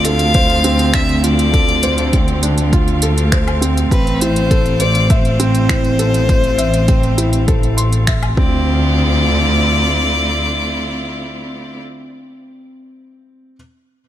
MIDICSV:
0, 0, Header, 1, 6, 480
1, 0, Start_track
1, 0, Key_signature, -1, "minor"
1, 0, Tempo, 594059
1, 1244, Time_signature, 4, 2, 24, 8
1, 11380, End_track
2, 0, Start_track
2, 0, Title_t, "Violin"
2, 0, Program_c, 0, 40
2, 37, Note_on_c, 0, 77, 125
2, 767, Note_on_c, 0, 76, 105
2, 779, Note_off_c, 0, 77, 0
2, 1001, Note_on_c, 0, 74, 105
2, 1013, Note_off_c, 0, 76, 0
2, 1963, Note_off_c, 0, 74, 0
2, 3163, Note_on_c, 0, 71, 97
2, 3400, Note_on_c, 0, 72, 107
2, 3412, Note_off_c, 0, 71, 0
2, 3885, Note_on_c, 0, 74, 105
2, 3897, Note_off_c, 0, 72, 0
2, 4126, Note_on_c, 0, 72, 107
2, 4138, Note_off_c, 0, 74, 0
2, 6525, Note_off_c, 0, 72, 0
2, 6773, Note_on_c, 0, 74, 102
2, 9543, Note_off_c, 0, 74, 0
2, 11380, End_track
3, 0, Start_track
3, 0, Title_t, "Felt piano"
3, 0, Program_c, 1, 0
3, 0, Control_c, 1, 64, 127
3, 0, Note_on_c, 1, 60, 81
3, 0, Note_on_c, 1, 62, 74
3, 0, Note_on_c, 1, 65, 84
3, 42, Note_on_c, 1, 69, 80
3, 271, Note_off_c, 1, 69, 0
3, 280, Note_on_c, 1, 72, 85
3, 511, Note_off_c, 1, 72, 0
3, 519, Note_off_c, 1, 60, 0
3, 519, Note_on_c, 1, 60, 105
3, 750, Note_off_c, 1, 60, 0
3, 760, Note_off_c, 1, 62, 0
3, 760, Note_on_c, 1, 62, 70
3, 990, Note_off_c, 1, 62, 0
3, 996, Note_off_c, 1, 65, 0
3, 996, Note_on_c, 1, 65, 77
3, 1228, Note_off_c, 1, 65, 0
3, 1235, Note_on_c, 1, 69, 82
3, 1468, Note_off_c, 1, 69, 0
3, 1483, Note_on_c, 1, 72, 81
3, 1712, Note_off_c, 1, 72, 0
3, 1723, Note_on_c, 1, 60, 81
3, 1952, Note_off_c, 1, 60, 0
3, 1962, Note_on_c, 1, 62, 78
3, 2191, Note_off_c, 1, 62, 0
3, 2202, Note_on_c, 1, 65, 86
3, 2432, Note_off_c, 1, 65, 0
3, 2446, Note_on_c, 1, 69, 78
3, 2673, Note_off_c, 1, 69, 0
3, 2687, Note_on_c, 1, 72, 73
3, 2914, Note_off_c, 1, 72, 0
3, 2920, Note_on_c, 1, 60, 76
3, 3150, Note_off_c, 1, 60, 0
3, 3167, Note_on_c, 1, 60, 81
3, 3177, Control_c, 1, 64, 0
3, 3325, Control_c, 1, 64, 127
3, 3394, Note_off_c, 1, 60, 0
3, 3409, Note_on_c, 1, 64, 75
3, 3635, Note_off_c, 1, 64, 0
3, 3644, Note_on_c, 1, 69, 82
3, 3873, Note_off_c, 1, 69, 0
3, 3891, Note_on_c, 1, 72, 78
3, 4116, Note_off_c, 1, 72, 0
3, 4127, Note_on_c, 1, 76, 88
3, 4354, Note_off_c, 1, 76, 0
3, 4360, Note_on_c, 1, 60, 100
3, 4590, Note_off_c, 1, 60, 0
3, 4598, Note_on_c, 1, 64, 73
3, 4829, Note_off_c, 1, 64, 0
3, 4841, Note_on_c, 1, 69, 80
3, 5071, Note_off_c, 1, 69, 0
3, 5081, Note_on_c, 1, 72, 83
3, 5311, Note_off_c, 1, 72, 0
3, 5318, Note_on_c, 1, 76, 85
3, 5549, Note_off_c, 1, 76, 0
3, 5561, Note_on_c, 1, 60, 85
3, 5791, Note_off_c, 1, 60, 0
3, 5799, Note_on_c, 1, 64, 76
3, 6030, Note_off_c, 1, 64, 0
3, 6042, Note_on_c, 1, 69, 87
3, 6271, Note_off_c, 1, 69, 0
3, 6279, Note_on_c, 1, 84, 77
3, 6510, Note_off_c, 1, 84, 0
3, 6522, Note_on_c, 1, 76, 75
3, 6751, Note_off_c, 1, 76, 0
3, 6765, Note_on_c, 1, 60, 97
3, 6776, Control_c, 1, 64, 0
3, 6868, Control_c, 1, 64, 127
3, 7014, Control_c, 1, 64, 0
3, 7152, Control_c, 1, 64, 127
3, 7213, Note_off_c, 1, 60, 0
3, 10956, Control_c, 1, 64, 0
3, 11380, End_track
4, 0, Start_track
4, 0, Title_t, "String quartet"
4, 0, Program_c, 2, 48
4, 0, Note_on_c, 2, 50, 73
4, 0, Note_on_c, 2, 57, 80
4, 0, Note_on_c, 2, 60, 67
4, 0, Note_on_c, 2, 65, 85
4, 0, Note_on_c, 2, 77, 65
4, 3132, Note_off_c, 2, 65, 0
4, 3133, Note_off_c, 2, 50, 0
4, 6730, Note_off_c, 2, 57, 0
4, 6732, Note_off_c, 2, 77, 0
4, 6733, Note_off_c, 2, 60, 0
4, 6767, Note_on_c, 2, 64, 71
4, 6768, Note_on_c, 2, 50, 77
4, 6769, Note_on_c, 2, 57, 74
4, 6770, Note_on_c, 2, 65, 91
4, 6771, Note_on_c, 2, 60, 76
4, 9540, Note_off_c, 2, 64, 0
4, 9541, Note_off_c, 2, 50, 0
4, 9541, Note_off_c, 2, 57, 0
4, 9541, Note_off_c, 2, 65, 0
4, 9542, Note_off_c, 2, 60, 0
4, 11380, End_track
5, 0, Start_track
5, 0, Title_t, "Double bass section"
5, 0, Program_c, 3, 48
5, 0, Note_on_c, 3, 38, 93
5, 3139, Note_off_c, 3, 38, 0
5, 3162, Note_on_c, 3, 33, 96
5, 6764, Note_off_c, 3, 33, 0
5, 6765, Note_on_c, 3, 38, 103
5, 8412, Note_off_c, 3, 38, 0
5, 11380, End_track
6, 0, Start_track
6, 0, Title_t, "Drums"
6, 38, Note_on_c, 9, 42, 74
6, 119, Note_off_c, 9, 42, 0
6, 155, Note_on_c, 9, 42, 34
6, 236, Note_off_c, 9, 42, 0
6, 277, Note_on_c, 9, 42, 42
6, 280, Note_on_c, 9, 36, 106
6, 358, Note_off_c, 9, 42, 0
6, 361, Note_off_c, 9, 36, 0
6, 401, Note_on_c, 9, 42, 23
6, 482, Note_off_c, 9, 42, 0
6, 518, Note_on_c, 9, 42, 75
6, 599, Note_off_c, 9, 42, 0
6, 640, Note_on_c, 9, 42, 33
6, 720, Note_off_c, 9, 42, 0
6, 756, Note_on_c, 9, 26, 72
6, 756, Note_on_c, 9, 42, 42
6, 761, Note_on_c, 9, 36, 106
6, 837, Note_off_c, 9, 26, 0
6, 837, Note_off_c, 9, 42, 0
6, 841, Note_off_c, 9, 36, 0
6, 881, Note_on_c, 9, 42, 21
6, 962, Note_off_c, 9, 42, 0
6, 1001, Note_on_c, 9, 42, 74
6, 1081, Note_off_c, 9, 42, 0
6, 1123, Note_on_c, 9, 42, 33
6, 1204, Note_off_c, 9, 42, 0
6, 1242, Note_on_c, 9, 36, 104
6, 1242, Note_on_c, 9, 42, 41
6, 1322, Note_off_c, 9, 36, 0
6, 1323, Note_off_c, 9, 42, 0
6, 1362, Note_on_c, 9, 42, 21
6, 1442, Note_off_c, 9, 42, 0
6, 1478, Note_on_c, 9, 42, 71
6, 1558, Note_off_c, 9, 42, 0
6, 1599, Note_on_c, 9, 42, 30
6, 1680, Note_off_c, 9, 42, 0
6, 1722, Note_on_c, 9, 42, 41
6, 1723, Note_on_c, 9, 36, 94
6, 1802, Note_off_c, 9, 42, 0
6, 1804, Note_off_c, 9, 36, 0
6, 1841, Note_on_c, 9, 42, 21
6, 1922, Note_off_c, 9, 42, 0
6, 1962, Note_on_c, 9, 42, 69
6, 2043, Note_off_c, 9, 42, 0
6, 2082, Note_on_c, 9, 42, 31
6, 2163, Note_off_c, 9, 42, 0
6, 2204, Note_on_c, 9, 36, 106
6, 2204, Note_on_c, 9, 42, 41
6, 2285, Note_off_c, 9, 36, 0
6, 2285, Note_off_c, 9, 42, 0
6, 2325, Note_on_c, 9, 42, 22
6, 2405, Note_off_c, 9, 42, 0
6, 2440, Note_on_c, 9, 42, 75
6, 2520, Note_off_c, 9, 42, 0
6, 2567, Note_on_c, 9, 42, 32
6, 2647, Note_off_c, 9, 42, 0
6, 2683, Note_on_c, 9, 36, 107
6, 2684, Note_on_c, 9, 26, 66
6, 2684, Note_on_c, 9, 42, 40
6, 2764, Note_off_c, 9, 36, 0
6, 2765, Note_off_c, 9, 26, 0
6, 2765, Note_off_c, 9, 42, 0
6, 2808, Note_on_c, 9, 42, 21
6, 2808, Note_on_c, 9, 77, 64
6, 2889, Note_off_c, 9, 42, 0
6, 2889, Note_off_c, 9, 77, 0
6, 2927, Note_on_c, 9, 42, 69
6, 3008, Note_off_c, 9, 42, 0
6, 3050, Note_on_c, 9, 42, 32
6, 3131, Note_off_c, 9, 42, 0
6, 3163, Note_on_c, 9, 36, 98
6, 3167, Note_on_c, 9, 42, 40
6, 3243, Note_off_c, 9, 36, 0
6, 3248, Note_off_c, 9, 42, 0
6, 3289, Note_on_c, 9, 42, 22
6, 3370, Note_off_c, 9, 42, 0
6, 3405, Note_on_c, 9, 42, 67
6, 3486, Note_off_c, 9, 42, 0
6, 3525, Note_on_c, 9, 42, 31
6, 3606, Note_off_c, 9, 42, 0
6, 3643, Note_on_c, 9, 36, 88
6, 3644, Note_on_c, 9, 42, 42
6, 3724, Note_off_c, 9, 36, 0
6, 3725, Note_off_c, 9, 42, 0
6, 3763, Note_on_c, 9, 42, 20
6, 3843, Note_off_c, 9, 42, 0
6, 3877, Note_on_c, 9, 42, 70
6, 3958, Note_off_c, 9, 42, 0
6, 3999, Note_on_c, 9, 42, 30
6, 4080, Note_off_c, 9, 42, 0
6, 4121, Note_on_c, 9, 42, 40
6, 4122, Note_on_c, 9, 36, 106
6, 4202, Note_off_c, 9, 42, 0
6, 4203, Note_off_c, 9, 36, 0
6, 4242, Note_on_c, 9, 42, 20
6, 4323, Note_off_c, 9, 42, 0
6, 4361, Note_on_c, 9, 42, 72
6, 4442, Note_off_c, 9, 42, 0
6, 4481, Note_on_c, 9, 42, 29
6, 4562, Note_off_c, 9, 42, 0
6, 4601, Note_on_c, 9, 26, 72
6, 4601, Note_on_c, 9, 42, 41
6, 4603, Note_on_c, 9, 36, 103
6, 4682, Note_off_c, 9, 26, 0
6, 4682, Note_off_c, 9, 42, 0
6, 4684, Note_off_c, 9, 36, 0
6, 4722, Note_on_c, 9, 42, 21
6, 4802, Note_off_c, 9, 42, 0
6, 4841, Note_on_c, 9, 42, 65
6, 4922, Note_off_c, 9, 42, 0
6, 4963, Note_on_c, 9, 42, 31
6, 5044, Note_off_c, 9, 42, 0
6, 5083, Note_on_c, 9, 36, 105
6, 5083, Note_on_c, 9, 42, 40
6, 5164, Note_off_c, 9, 36, 0
6, 5164, Note_off_c, 9, 42, 0
6, 5201, Note_on_c, 9, 42, 21
6, 5282, Note_off_c, 9, 42, 0
6, 5321, Note_on_c, 9, 42, 69
6, 5402, Note_off_c, 9, 42, 0
6, 5443, Note_on_c, 9, 42, 30
6, 5524, Note_off_c, 9, 42, 0
6, 5560, Note_on_c, 9, 42, 42
6, 5564, Note_on_c, 9, 36, 92
6, 5641, Note_off_c, 9, 42, 0
6, 5645, Note_off_c, 9, 36, 0
6, 5683, Note_on_c, 9, 42, 20
6, 5764, Note_off_c, 9, 42, 0
6, 5802, Note_on_c, 9, 42, 65
6, 5883, Note_off_c, 9, 42, 0
6, 5921, Note_on_c, 9, 42, 30
6, 6002, Note_off_c, 9, 42, 0
6, 6044, Note_on_c, 9, 42, 41
6, 6045, Note_on_c, 9, 36, 103
6, 6124, Note_off_c, 9, 42, 0
6, 6125, Note_off_c, 9, 36, 0
6, 6168, Note_on_c, 9, 42, 22
6, 6248, Note_off_c, 9, 42, 0
6, 6284, Note_on_c, 9, 42, 73
6, 6365, Note_off_c, 9, 42, 0
6, 6404, Note_on_c, 9, 42, 30
6, 6485, Note_off_c, 9, 42, 0
6, 6523, Note_on_c, 9, 26, 78
6, 6523, Note_on_c, 9, 42, 43
6, 6525, Note_on_c, 9, 36, 101
6, 6604, Note_off_c, 9, 26, 0
6, 6604, Note_off_c, 9, 42, 0
6, 6606, Note_off_c, 9, 36, 0
6, 6646, Note_on_c, 9, 42, 21
6, 6646, Note_on_c, 9, 77, 67
6, 6727, Note_off_c, 9, 42, 0
6, 6727, Note_off_c, 9, 77, 0
6, 6766, Note_on_c, 9, 36, 109
6, 6847, Note_off_c, 9, 36, 0
6, 11380, End_track
0, 0, End_of_file